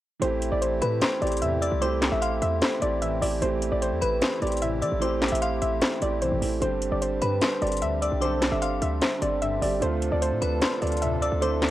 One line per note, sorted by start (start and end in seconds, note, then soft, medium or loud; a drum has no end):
0.20 0.51 A1 loud
0.20 0.86 E3 loud
0.20 0.87 A3 medium
0.20 6.58 A3 medium
0.20 9.78 C4 medium
0.20 0.88 C4 medium
0.20 6.58 E4 medium
0.20 9.78 G4 medium
0.20 0.50 C5 loud
0.20 closed hi-hat medium
0.24 0.88 G4 loud
0.42 closed hi-hat medium
0.52 0.81 A1 loud
0.52 0.60 D5 medium
0.62 0.78 C5 medium
0.62 closed hi-hat medium
0.82 1.01 A2 loud
0.82 0.98 B4 medium
0.82 1.01 B5 medium
0.82 closed hi-hat medium
1.01 1.18 C5 medium
1.01 1.58 C6 medium
1.01 snare loud
1.01 clap loud
1.01 closed hi-hat medium
1.20 1.43 A1 loud
1.20 1.70 E3 medium
1.20 1.71 A3 medium
1.20 1.71 C4 medium
1.20 1.38 D5 medium
1.20 closed hi-hat soft
1.24 1.72 G4 medium
1.24 closed hi-hat medium
1.32 closed hi-hat medium
1.37 closed hi-hat medium
1.42 1.70 E2 loud
1.42 1.59 A2 loud
1.42 1.59 C3 loud
1.42 1.59 E3 loud
1.42 1.58 E5 medium
1.42 closed hi-hat medium
1.62 1.78 D5 medium
1.62 1.81 E6 medium
1.62 closed hi-hat medium
1.72 2.10 C2 loud
1.80 2.47 E3 medium
1.80 2.47 A3 loud
1.80 2.48 C4 medium
1.80 2.10 C5 loud
1.80 2.19 D6 medium
1.80 closed hi-hat medium
1.84 2.49 G4 loud
2.02 snare medium
2.02 clap medium
2.02 closed hi-hat medium
2.12 2.41 A1 loud
2.12 2.20 E5 medium
2.22 2.38 F5 medium
2.22 3.38 C6 medium
2.22 closed hi-hat medium
2.42 2.61 E2 loud
2.42 2.58 E5 medium
2.42 closed hi-hat medium
2.62 2.78 C5 medium
2.62 snare loud
2.62 clap loud
2.62 closed hi-hat medium
2.79 3.20 A1 loud
2.79 3.13 E3 medium
2.79 3.14 A3 medium
2.79 3.15 C4 medium
2.79 2.98 D5 medium
2.79 closed hi-hat medium
2.84 3.16 G4 medium
3.02 3.19 A2 medium
3.02 3.19 C3 loud
3.02 3.19 E3 loud
3.02 3.18 E5 medium
3.02 closed hi-hat medium
3.20 3.41 A1 loud
3.20 3.37 E3 medium
3.20 3.38 A3 medium
3.20 3.39 C4 medium
3.20 3.38 D5 medium
3.20 open hi-hat medium
3.24 3.39 G4 medium
3.40 3.71 A1 loud
3.40 4.07 E3 loud
3.40 4.07 A3 loud
3.40 4.08 C4 medium
3.40 3.70 C5 loud
3.40 closed hi-hat medium
3.44 4.09 G4 loud
3.62 closed hi-hat medium
3.72 3.93 A1 loud
3.72 3.80 D5 medium
3.82 3.98 C5 medium
3.82 closed hi-hat medium
3.92 4.01 E2 loud
4.01 4.21 A1 loud
4.01 4.18 B4 medium
4.01 4.21 B5 medium
4.01 closed hi-hat medium
4.22 4.38 C5 medium
4.22 4.78 C6 medium
4.22 snare loud
4.22 clap loud
4.22 closed hi-hat medium
4.40 4.83 A1 loud
4.40 4.90 E3 medium
4.40 4.91 A3 medium
4.40 4.91 C4 medium
4.40 4.58 D5 medium
4.40 closed hi-hat soft
4.44 4.92 G4 medium
4.44 closed hi-hat medium
4.52 closed hi-hat medium
4.57 closed hi-hat medium
4.62 4.79 A2 loud
4.62 4.79 C3 loud
4.62 4.79 E3 loud
4.62 4.78 E5 medium
4.62 closed hi-hat medium
4.82 4.91 E3 loud
4.82 4.98 D5 medium
4.82 5.01 E6 medium
4.82 closed hi-hat medium
4.92 5.30 A1 loud
4.99 5.66 E3 loud
4.99 5.67 A3 medium
4.99 5.68 C4 loud
4.99 5.30 C5 loud
4.99 5.39 D6 loud
4.99 closed hi-hat medium
5.04 5.68 G4 loud
5.22 snare medium
5.22 clap medium
5.22 closed hi-hat medium
5.28 5.61 A1 loud
5.28 5.40 E5 medium
5.28 closed hi-hat medium
5.35 closed hi-hat medium
5.42 5.58 F5 medium
5.42 6.18 C6 medium
5.42 closed hi-hat medium
5.62 5.81 A1 loud
5.62 5.78 E5 medium
5.62 closed hi-hat medium
5.81 5.98 C5 medium
5.81 snare loud
5.81 clap loud
5.81 closed hi-hat medium
6.00 6.23 A1 loud
6.00 6.34 E3 medium
6.00 6.35 A3 medium
6.00 6.35 C4 medium
6.00 6.18 D5 medium
6.00 closed hi-hat medium
6.05 6.36 G4 medium
6.22 6.31 B1 loud
6.22 6.39 A2 loud
6.22 6.39 C3 loud
6.22 6.39 E3 loud
6.22 6.59 C5 medium
6.22 closed hi-hat medium
6.32 6.41 A1 loud
6.40 6.61 A1 loud
6.40 6.57 E3 medium
6.40 6.58 A3 medium
6.40 6.59 C4 medium
6.40 open hi-hat medium
6.44 6.59 E4 medium
6.60 6.91 G1 loud
6.60 7.27 D3 loud
6.60 7.27 G3 medium
6.60 9.79 G3 medium
6.60 7.28 C4 medium
6.60 11.71 D4 medium
6.60 6.90 C5 loud
6.60 closed hi-hat medium
6.65 7.29 G4 loud
6.82 closed hi-hat medium
6.92 7.21 G1 loud
6.92 7.00 D5 medium
7.02 7.18 C5 medium
7.02 closed hi-hat medium
7.22 7.41 G2 loud
7.22 7.38 B4 medium
7.22 7.41 B5 medium
7.22 closed hi-hat medium
7.42 7.58 C5 medium
7.42 7.98 C6 loud
7.42 snare loud
7.42 clap loud
7.42 closed hi-hat medium
7.60 7.83 G1 loud
7.60 8.10 D3 medium
7.60 8.11 G3 medium
7.60 8.11 C4 medium
7.60 7.78 D5 medium
7.60 closed hi-hat soft
7.64 8.12 G4 medium
7.64 closed hi-hat medium
7.72 closed hi-hat medium
7.77 closed hi-hat medium
7.82 8.10 D2 loud
7.82 7.99 G2 loud
7.82 7.99 D3 loud
7.82 7.98 E5 medium
7.82 closed hi-hat medium
8.02 8.18 D5 medium
8.02 8.21 E6 medium
8.02 closed hi-hat medium
8.12 8.50 B1 loud
8.20 8.87 D3 loud
8.20 8.87 G3 medium
8.20 8.88 C4 medium
8.20 8.50 C5 loud
8.20 8.59 D6 loud
8.20 closed hi-hat medium
8.25 8.89 A4 loud
8.42 snare medium
8.42 clap medium
8.42 closed hi-hat medium
8.52 8.81 G1 loud
8.52 8.60 E5 medium
8.62 8.78 F5 medium
8.62 9.78 C6 medium
8.62 closed hi-hat medium
8.82 9.01 D2 loud
8.82 8.98 E5 medium
8.82 closed hi-hat medium
9.02 9.18 C5 medium
9.02 snare loud
9.02 clap medium
9.02 closed hi-hat medium
9.19 9.60 G1 loud
9.19 9.53 D3 medium
9.19 9.54 G3 medium
9.19 9.55 C4 medium
9.19 9.38 D5 medium
9.19 closed hi-hat medium
9.23 9.55 A4 medium
9.42 9.59 G2 loud
9.42 9.59 D3 loud
9.42 9.58 E5 medium
9.42 closed hi-hat medium
9.60 9.81 G1 loud
9.60 9.77 D3 medium
9.60 9.78 G3 medium
9.60 9.79 C4 medium
9.60 9.78 D5 medium
9.60 open hi-hat medium
9.64 9.79 G4 medium
9.80 10.11 D2 loud
9.80 11.71 C3 medium
9.80 10.46 D3 loud
9.80 11.71 F3 medium
9.80 10.47 A3 loud
9.80 10.48 C4 medium
9.80 11.71 A4 medium
9.80 10.10 C5 loud
9.80 closed hi-hat medium
9.84 10.49 F4 loud
10.02 closed hi-hat medium
10.12 10.33 D2 loud
10.12 10.20 D5 medium
10.22 10.38 C5 medium
10.22 closed hi-hat medium
10.32 10.41 A2 loud
10.42 10.61 D2 loud
10.42 10.58 B4 medium
10.42 10.61 B5 medium
10.42 closed hi-hat medium
10.62 10.78 C5 medium
10.62 11.18 C6 medium
10.62 snare loud
10.62 clap loud
10.62 closed hi-hat medium
10.80 11.30 D2 loud
10.80 11.30 D3 medium
10.80 11.31 A3 medium
10.80 11.32 C4 medium
10.80 10.98 D5 medium
10.80 closed hi-hat soft
10.84 11.32 F4 medium
10.84 closed hi-hat medium
10.92 closed hi-hat medium
10.97 closed hi-hat medium
11.02 11.19 F2 loud
11.02 11.19 A2 medium
11.02 11.19 C3 loud
11.02 11.18 E5 medium
11.02 closed hi-hat medium
11.22 11.38 D5 medium
11.22 11.41 E6 medium
11.22 closed hi-hat medium
11.32 11.70 D2 loud
11.40 11.71 D3 loud
11.40 11.71 A3 medium
11.40 11.71 C4 loud
11.40 11.70 C5 loud
11.40 11.71 D6 loud
11.40 closed hi-hat medium
11.44 11.71 E4 loud
11.62 snare medium
11.62 clap medium
11.62 closed hi-hat medium